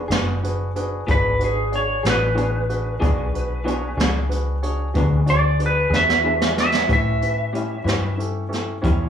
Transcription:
0.08 F#1 B3 D4 F#4 G#4 B4, snare, closed hi-hat
0.43 D4 F#4 G#4 B4, closed hi-hat
0.76 D4 F#4 G#4 B4, closed hi-hat
1.07 G#1 E3 B3 D4 F#4 G#4 B4 D5, kick, closed hi-hat
1.39 D4 F#4 G#4 B4, closed hi-hat
1.44 G#4
1.72 D4 F#4 G#4 C#5 D5, closed hi-hat
2.03 A1 B3 D4 F#4 G#4 B4, snare, closed hi-hat
2.10 B4
2.35 E3 B3 D4 F#4 G#4 C#5, closed hi-hat
2.69 D4 F#4 G#4 B4, closed hi-hat
2.99 B1 E3 B3 D4 F#4 G#4 D5, kick, closed hi-hat
3.33 D4 F#4 G#4 B4, closed hi-hat
3.64 E3 B3 D4 F#4 G#4 C#5, closed hi-hat
3.68 G#4
3.97 C#2 D4 F#4 G#4 C#5, snare, closed hi-hat
4.01 B3
4.29 D4 F#4 G#4 B4, closed hi-hat
4.62 D4 F#4 G#4 C#5, closed hi-hat
4.94 D2 E3 B3 D4 F#4 G#4 B4, kick, closed hi-hat
4.98 G#4
5.26 D4 F#4 G#4 D5, closed hi-hat
5.30 D5
5.59 D4 F#4 G#4 B4, closed hi-hat
5.66 B4
5.90 E2 B3 D4 F#4 G#4 B4, snare
5.96 E5
6.10 snare
6.22 E3 B3 D4 F#4 G#4 B4
6.42 snare
6.55 D4 F#4 G#4 B4, snare
6.60 E5
6.75 snare
6.88 A2 G3 C#4 E4 G4 B4, kick, closed hi-hat
6.93 E5
7.21 C#4 E4 G4 B4, closed hi-hat
7.52 A2 G3 C#4 E4 G4 C#5, closed hi-hat
7.84 G2 G3 C#4 E4 G4 B4, closed hi-hat
7.89 snare
8.17 C#4 E4 G4 A4, closed hi-hat
8.49 C#4 E4 G4 A4, closed hi-hat
8.54 snare
8.82 E2 A2 G3 C#4 E4 G4 C#5, kick, closed hi-hat

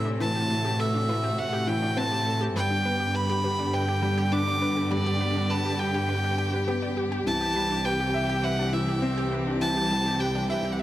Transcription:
Already playing: A2 C3 E3 A3 C4 E4 A4 E5
0.05 D4
0.20 E3 F#4 B4 A5
0.35 G4
0.50 A3
0.65 G4
0.79 A4 B4 E5
0.94 D4
1.08 E4 B4
1.24 G4
1.38 E5 F#5
1.53 G4
1.67 E3 B4 G5
1.82 D4
1.97 C4 B4 A5
2.12 G4
2.26 A4
2.41 G4
2.55 G2 D3 G3 B3 G4 B4 G5
2.70 D4
2.85 B3 B4
3.00 G4
3.15 B4 B5
3.29 G4
3.44 G4 B4
3.59 D4
3.73 B4 G5
3.88 G4
4.02 G3
4.18 G4
4.32 D4 B4 D6
4.47 D4
4.61 B4
4.77 G4
4.91 G3 D5
5.06 G4
5.20 B3 B4
5.35 D4
5.50 B4 A5
5.65 G4
5.79 G4 G5
5.94 G4
6.09 B4 G5
6.24 D4
6.38 G4 G5
6.53 B4
6.67 B3 G4
6.82 D5
6.97 G4
7.12 G4
7.26 C2 E3 C4 A5
7.41 G4
7.56 G3 B4
7.70 D4
7.85 G4 B4 G5
8.00 G4
8.14 E5
8.29 G4
8.44 B4 E5 F#5
8.59 D4
8.73 E3 B4 E5
8.88 G4
9.02 C4
9.17 G4
9.32 G4 B4
9.47 D4
9.61 E3 B4 A5
9.76 G4
9.91 G3
10.06 G4
10.20 G4 B4 G5
10.35 D4
10.49 B4 E5 G5
10.65 G4
10.72 F#5
10.79 E5

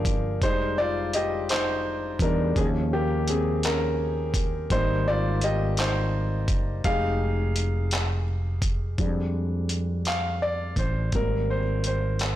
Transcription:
Already playing: G1 F3 A#3 C4 D4 G4 G#4 A#4
0.05 kick, closed hi-hat
0.42 F1 G3 G#3 D#4 C5, kick, closed hi-hat
0.78 F4 D5
1.13 G4 D#5, closed hi-hat
1.49 D#4 C5, clap, closed hi-hat
2.19 E2 G3 G#3 D4 D#4 A#4, kick, closed hi-hat
2.56 D#2 D#3 F3 C#4 G#4, kick, closed hi-hat
2.93 A#3 G4
3.28 C4 G#4, closed hi-hat
3.63 C#4 A#4, clap, closed hi-hat
4.34 kick, closed hi-hat
4.70 G#1 G3 A#3 C4 D#4 C5, kick, closed hi-hat
5.08 F4 D5
5.41 G4 D#5, closed hi-hat
5.77 D#4 C5, clap, closed hi-hat
6.48 F#1, kick, closed hi-hat
6.84 F1 G#3 D#4 G4 G#4 F5, kick, closed hi-hat
7.56 closed hi-hat
7.91 clap, closed hi-hat
8.62 kick, closed hi-hat
8.98 F2 G3 G#3 D4, kick, closed hi-hat
9.69 closed hi-hat
10.05 F5, clap, closed hi-hat
10.42 D5
10.76 A1 C5, kick, closed hi-hat
11.12 G#1 G3 A#3 C4 A#4, kick, closed hi-hat
11.50 C5
11.84 C5, closed hi-hat
12.19 clap, closed hi-hat

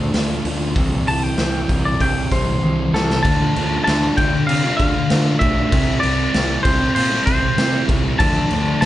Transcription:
Already playing: D3 A3 D4 F4
0.14 D2 D3 A3 D4 F4, snare, open hi-hat
0.45 D2 D3 A3 D4 F4, open hi-hat
0.75 C2 C3 E3 G3 C4 E4, kick, open hi-hat
1.07 C3 E3 G3 C4 E4 A5, open hi-hat
1.23 G5
1.38 C2 C3 E3 G3 C4 E4, snare, open hi-hat
1.69 C2 C3 E3 G3 C4 E4, kick, open hi-hat
1.85 D5
2.00 C2 C3 E3 G3 C4 E4 G5, kick, open hi-hat
2.31 C2 C3 E3 G3 C4 E4 C5, kick, snare, open hi-hat
2.63 C2 C3 E3 G3 C4 E4, high tom
2.94 C2 C3 E3 G3 C4 E4 A4, snare
3.10 snare
3.23 D2 D3 A3 D4 A5, kick, crash
3.27 F4
3.56 D2 D3 A3 D4 F4, crash
3.84 D2 D3 A3 A5, snare, crash
3.89 D4 F4
4.17 D2 D3 A3 D4 F4 G5, kick, crash
4.34 muted distorted electric guitar stroke
4.47 C3 F5, crash
4.64 A3 D4 F4
4.77 D2 D3 A3 F5, kick, crash
4.81 D4 F4
4.95 muted distorted electric guitar stroke
5.10 D3 A3 D4 F4, snare, crash
5.39 B1 D3 A3 D4 F4 E5, kick, crash
5.56 A3 D4 F4
5.72 C2 C3 G3 C4 E4, kick, crash
6.00 C2 C3 G3 C4 D5, crash
6.05 E4
6.33 C2 C3 G3 C4 E4, snare, crash
6.63 C2 C3 G3 C4 E4 C5, kick, crash
6.80 muted distorted electric guitar stroke
6.95 A#2 C5, crash
7.10 G3 C4 E4
7.26 C2 C3 G3 C4 E4 C5, kick, crash
7.42 muted distorted electric guitar stroke
7.57 C3 G3 C4 E4, snare, crash
7.88 C2 C3 G3 C4 E4, kick, crash
8.04 G3 C4 E4
8.19 D2 D3 F3 A3 D4 A5, kick, crash
8.51 D2 D3 F3 A3 D4, crash
8.81 D2 D3 F3 A5, snare, crash

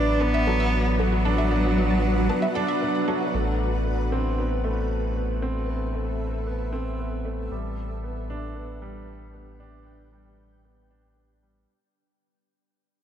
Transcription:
Already playing: A1 F#3 B3 D4 F#4 B4 F#5
0.21 B3 A5
0.34 E5
0.47 F#3 A4
0.60 E5
0.99 F#3 B3 A4
1.12 F#4
1.25 D4 A4
1.38 E5
1.51 B3 D5
1.78 F#3
1.90 A5
2.29 B3 A5
2.42 E5
2.55 D4 A4
2.68 E5
2.82 B3
3.08 F#3 A4
3.21 F#4
3.34 A1 A3
3.69 A4
3.86 B3
4.12 C4
4.27 E5
4.38 B3
4.64 A3
5.16 B3
5.42 C4
5.69 B3
5.95 A3
6.47 B3
6.73 C4
6.99 B3
7.25 A3
7.51 A1 G3 D4 G4
8.04 B3
8.28 D4 G5
8.56 B3
8.82 G3
9.34 B3
9.60 D4
9.86 B3
10.12 G3
10.64 B3
10.90 D4
11.17 B3
11.43 G3

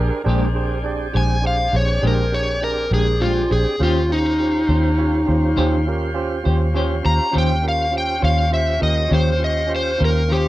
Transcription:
Already playing: D4 G4 G#4 A#4 C5
0.24 A#1 A#2 G#3 C4 D4 G4 G#4 C5
0.29 G4
0.54 D4 G4 G#4 C5
0.84 D4 G4 G#4 D5
1.13 A#1 G#3 D4 G4 G#4 C5 G#5
1.42 D4 G4 G#4 C5
1.47 F5
1.72 A#1 D4 G4 G#4 C5
1.76 C#5
2.02 A#1 A#2 G#3 D4 G4 G#4 C5
2.07 A#4
2.32 D4 G4 G#4 A#4 C#5
2.62 D4 G4 G#4 A#4 D5
2.91 A#1 G#3 D4 G4 G#4 A#4
3.20 A#2 G#3 D4 F4 G4 G#4 C5
3.24 G4
3.49 A#1 D4 G4 G#4 C5
3.79 D#2 D#3 C#4 F4 G4 C5
3.83 G4 C5
4.09 C#4 D#4 F4 G4 C5
4.39 C#4 F4 G4 C5
4.69 D#2 C#4 F4 G4 C5
4.97 C#4 F4 G4 C#5
5.26 D#2 C#4 F4 G4 C5
5.56 D#2 D#3 C#4 F4 G4 C5
5.87 C#4 F4 G4 A#4
6.14 C#4 F4 G4 C5
6.44 D#2 C#4 F4 G4 C5
6.74 D#3 C#4 F4 G4 C5 C#5
7.03 D#2 C#4 F4 G4 C5 A#5
7.31 D#3 C#4 F4 G4 C5 C#5
7.35 D#2 G5
7.62 C#4 F4 G4 A#4
7.68 F5
7.91 C#4 F4 G4 C5
7.98 G5
8.20 D#2 C#4 F4 G4 C5 C#5
8.24 F5
8.51 C#4 F4 G4 C5 E5
8.79 D#2 C#4 F4 G4 A#4 D#5
9.09 D#2 D#3 C#4 F4 G4 C#5
9.13 G4 C5
9.38 C#4 F4 G4 C5
9.44 D#5
9.67 C#4 F4 G4 C5
9.76 C5
9.98 D#2 C#4 F4 G4 A#4 C5
10.03 C#4 A#4
10.28 D#3 C#4 F4 G4 C5
10.32 G4 C5

